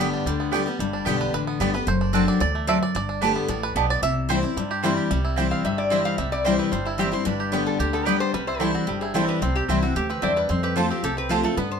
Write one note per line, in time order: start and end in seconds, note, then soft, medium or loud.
0.00 0.12 G1 loud
0.00 0.23 G2 loud
0.00 0.24 D3 medium
0.00 0.25 G3 medium
0.00 0.25 B3 loud
0.00 0.26 G4 medium
0.13 0.53 D4 medium
0.26 0.66 D2 medium
0.26 0.51 D3 loud
0.26 0.64 G3 medium
0.40 0.77 B3 medium
0.51 0.66 D3 medium
0.51 0.66 G3 medium
0.51 0.61 B3 medium
0.51 0.67 B3 medium
0.51 0.93 D4 medium
0.51 0.61 G4 medium
0.51 0.65 G4 loud
0.51 0.62 D5 medium
0.51 0.62 G5 loud
0.66 0.79 G3 medium
0.66 0.80 B3 medium
0.66 0.79 G4 medium
0.79 0.99 G1 loud
0.79 1.31 G2 medium
0.79 1.06 G3 medium
0.93 1.61 D4 medium
1.05 1.29 B1 medium
1.05 1.32 D3 medium
1.05 1.44 G3 medium
1.05 1.32 G3 loud
1.05 1.15 B3 medium
1.05 1.33 B3 medium
1.05 1.15 G4 medium
1.05 1.33 G4 loud
1.05 1.15 D5 medium
1.05 1.16 G5 medium
1.21 1.33 B4 medium
1.34 1.56 A1 medium
1.34 1.59 D3 medium
1.34 1.47 B4 medium
1.47 1.85 B3 medium
1.60 1.83 G1 medium
1.60 1.73 D3 medium
1.60 1.74 G3 loud
1.60 1.69 B3 medium
1.60 1.74 B3 loud
1.60 1.69 G4 medium
1.60 1.72 G4 loud
1.60 1.74 D5 medium
1.60 1.70 D5 medium
1.60 1.70 G5 loud
1.74 1.88 B3 medium
1.74 1.87 G4 medium
1.74 1.87 B4 medium
1.87 2.27 F#1 medium
1.87 2.38 F#2 loud
1.87 2.13 C5 loud
2.01 2.28 D4 medium
2.13 2.39 F#3 medium
2.13 2.40 A3 medium
2.13 2.23 C4 medium
2.13 2.52 C4 medium
2.13 2.40 D4 medium
2.13 2.23 F#4 medium
2.13 2.40 F#4 loud
2.13 2.23 D5 medium
2.13 2.23 A5 medium
2.28 2.40 D5 loud
2.40 2.81 D2 medium
2.40 2.66 E2 medium
2.40 2.68 D5 loud
2.55 2.92 A3 medium
2.67 2.93 F#2 loud
2.67 2.77 C4 medium
2.67 2.77 F#4 medium
2.67 2.77 D5 loud
2.67 2.81 E5 loud
2.67 2.77 A5 loud
2.83 2.95 D5 loud
2.95 3.35 G1 loud
2.95 3.46 G2 loud
2.95 3.21 D5 loud
3.09 3.46 D4 medium
3.21 3.47 D3 medium
3.21 4.57 G3 medium
3.21 3.48 A3 loud
3.21 3.31 B3 medium
3.21 3.48 B3 loud
3.21 3.31 G4 medium
3.21 3.49 G4 loud
3.21 3.31 D5 medium
3.21 3.31 A5 loud
3.36 3.63 B3 medium
3.48 3.72 A1 medium
3.48 3.74 A2 loud
3.48 3.87 D4 medium
3.63 3.76 B4 loud
3.75 3.98 B1 medium
3.75 4.01 B2 loud
3.75 3.85 B3 medium
3.75 4.03 B3 medium
3.75 3.85 G4 loud
3.75 3.85 D5 medium
3.75 3.85 A5 medium
3.90 4.02 D5 loud
4.02 4.42 C2 medium
4.02 4.54 C3 loud
4.02 4.30 E5 loud
4.29 4.42 E3 loud
4.29 4.43 G3 medium
4.29 4.38 C4 loud
4.29 4.43 C4 loud
4.29 4.38 E4 medium
4.29 4.42 E4 loud
4.29 4.93 C5 medium
4.29 4.39 C5 medium
4.29 4.39 G5 loud
4.43 4.57 C4 soft
4.43 4.56 E4 medium
4.43 4.81 E4 medium
4.56 4.96 G2 medium
4.56 5.08 G2 loud
4.56 4.83 G3 medium
4.71 4.96 G4 medium
4.83 5.09 E3 medium
4.83 5.09 G3 medium
4.83 4.92 C4 medium
4.83 5.10 C4 medium
4.83 4.92 E4 loud
4.83 5.10 E4 loud
4.83 4.92 C5 medium
4.83 4.93 G5 loud
4.97 5.10 G4 medium
5.11 5.50 C2 loud
5.11 5.62 C3 loud
5.11 5.37 G3 medium
5.25 5.62 E4 medium
5.36 5.63 E3 medium
5.36 5.64 G3 medium
5.36 5.63 G3 medium
5.36 5.46 C4 medium
5.36 5.64 C4 medium
5.36 5.46 E4 medium
5.36 5.64 E4 loud
5.36 5.46 C5 medium
5.36 5.46 G5 loud
5.51 5.89 C4 medium
5.51 5.64 F5 medium
5.64 6.04 G1 medium
5.64 6.16 G2 medium
5.64 6.05 G3 medium
5.64 5.78 E5 medium
5.78 6.16 E4 medium
5.78 5.91 D5 medium
5.90 6.16 E3 medium
5.90 6.17 G3 medium
5.90 6.00 C4 medium
5.90 6.29 C4 medium
5.90 6.17 C4 medium
5.90 6.00 E4 medium
5.90 6.18 E4 medium
5.90 6.00 C5 medium
5.90 6.05 E5 medium
5.90 6.00 G5 medium
6.05 6.18 G3 medium
6.05 6.18 F5 loud
6.18 6.58 C2 loud
6.18 6.69 C3 medium
6.18 6.45 G3 medium
6.18 6.31 E5 medium
6.32 6.70 E4 medium
6.32 6.45 D5 loud
6.44 6.71 E3 medium
6.44 6.72 G3 medium
6.44 6.71 G3 medium
6.44 6.54 C4 medium
6.44 6.71 C4 loud
6.44 6.54 E4 medium
6.44 6.72 E4 medium
6.44 6.58 C5 medium
6.44 6.54 C5 medium
6.44 6.55 G5 medium
6.59 6.96 C4 medium
6.59 6.71 B4 medium
6.72 7.12 G1 medium
6.72 7.24 G2 medium
6.72 7.12 G3 medium
6.72 6.85 C5 medium
6.85 6.99 E4 medium
6.85 7.24 E4 medium
6.98 7.12 E3 medium
6.98 7.12 G3 loud
6.98 7.08 C4 medium
6.98 7.26 C4 medium
6.98 7.12 C4 medium
6.98 7.08 E4 medium
6.98 7.10 E4 loud
6.98 7.12 G4 medium
6.98 7.08 C5 medium
6.98 7.08 G5 medium
7.12 7.52 G3 medium
7.12 7.26 C4 medium
7.12 7.25 E4 medium
7.12 7.26 C5 loud
7.25 7.66 G1 loud
7.25 7.77 G2 loud
7.25 7.64 D4 medium
7.25 7.64 B4 medium
7.40 7.79 G4 medium
7.52 7.78 D3 loud
7.52 8.34 G3 medium
7.52 7.79 G3 medium
7.52 7.62 B3 medium
7.52 7.79 B3 medium
7.52 7.62 G4 medium
7.52 7.79 G4 medium
7.52 7.62 D5 medium
7.52 7.62 G5 loud
7.66 8.04 D4 medium
7.66 7.80 A4 medium
7.80 8.20 D2 medium
7.80 8.05 D3 loud
7.80 8.07 G4 medium
7.80 7.93 G4 medium
7.93 8.31 B3 medium
7.93 8.07 A4 loud
8.05 8.32 D3 medium
8.05 8.33 G3 medium
8.05 8.15 B3 medium
8.05 8.33 B3 medium
8.05 8.15 G4 medium
8.05 9.47 G4 medium
8.05 8.33 G4 medium
8.05 8.20 B4 medium
8.05 8.16 D5 medium
8.05 8.16 G5 medium
8.20 8.34 D4 medium
8.20 8.33 C5 loud
8.34 8.74 C2 medium
8.34 8.85 C3 medium
8.34 8.60 G3 medium
8.34 8.47 B4 medium
8.47 8.85 E4 medium
8.47 8.60 C5 loud
8.60 8.86 E3 medium
8.60 8.87 G3 medium
8.60 8.69 C4 medium
8.60 8.87 C4 medium
8.60 8.69 E4 medium
8.60 8.87 E4 medium
8.60 8.74 A4 medium
8.60 8.70 C5 medium
8.60 8.70 G5 medium
8.74 9.15 C4 medium
8.74 8.87 F#4 medium
8.87 9.28 G1 medium
8.87 9.39 G2 medium
8.87 9.26 G3 medium
8.87 9.01 G4 medium
9.01 9.40 E4 medium
9.01 9.14 G#4 medium
9.14 9.40 E3 medium
9.14 9.40 G3 medium
9.14 9.23 C4 medium
9.14 9.42 C4 medium
9.14 9.41 C4 loud
9.14 9.24 E4 medium
9.14 9.41 E4 loud
9.14 9.28 A4 medium
9.14 9.24 C5 medium
9.14 9.24 G5 medium
9.28 9.66 G3 medium
9.28 9.41 B4 medium
9.42 9.62 C2 loud
9.42 9.93 C3 loud
9.42 9.80 C4 medium
9.42 9.55 C5 medium
9.55 9.63 G4 medium
9.55 9.93 G4 medium
9.68 9.92 C2 medium
9.68 9.82 E3 medium
9.68 9.82 G3 loud
9.68 9.78 C4 medium
9.68 9.83 C4 loud
9.68 9.78 E4 medium
9.68 10.07 E4 medium
9.68 9.81 E4 medium
9.68 9.78 C5 medium
9.68 9.78 G5 loud
9.82 10.08 C4 medium
9.82 9.96 C4 soft
9.82 9.95 E4 medium
9.82 9.95 F#4 medium
9.95 10.18 D2 medium
9.95 10.21 A2 medium
9.95 10.09 G4 medium
9.95 10.34 G4 medium
10.10 10.47 C4 medium
10.10 10.23 B4 medium
10.22 10.46 E2 medium
10.22 10.48 G2 medium
10.22 10.31 C4 medium
10.22 10.49 E4 medium
10.22 10.32 E4 medium
10.22 10.32 C5 medium
10.22 10.36 D5 loud
10.22 10.32 G5 loud
10.36 10.50 G3 medium
10.36 10.50 B4 medium
10.49 11.00 F2 medium
10.49 10.90 F2 loud
10.49 10.87 C4 medium
10.49 10.63 C5 medium
10.63 11.01 G4 medium
10.63 10.76 B4 loud
10.76 11.02 F3 medium
10.76 11.02 A3 medium
10.76 10.85 C4 medium
10.76 11.03 C4 medium
10.76 10.85 F4 medium
10.76 11.14 F4 medium
10.76 11.03 F4 loud
10.76 10.90 A4 medium
10.76 10.86 C5 medium
10.76 10.86 A5 medium
10.90 11.16 C4 medium
10.90 11.04 G4 medium
11.03 11.43 C2 medium
11.03 11.55 C3 loud
11.03 11.41 G4 medium
11.03 11.17 A4 medium
11.17 11.55 C4 medium
11.17 11.30 B4 loud
11.29 11.43 F3 medium
11.29 11.43 A3 loud
11.29 11.39 C4 medium
11.29 11.44 C4 medium
11.29 11.39 F4 medium
11.29 11.57 F4 medium
11.29 11.42 F4 loud
11.29 11.44 G4 medium
11.29 11.39 C5 medium
11.29 11.40 A5 loud
11.43 11.57 A3 medium
11.43 11.58 C4 medium
11.43 11.56 F4 medium
11.43 11.57 A4 loud
11.57 11.80 G2 loud
11.57 11.80 G2 medium
11.57 11.80 B3 medium
11.57 11.71 B4 medium
11.71 11.80 C5 medium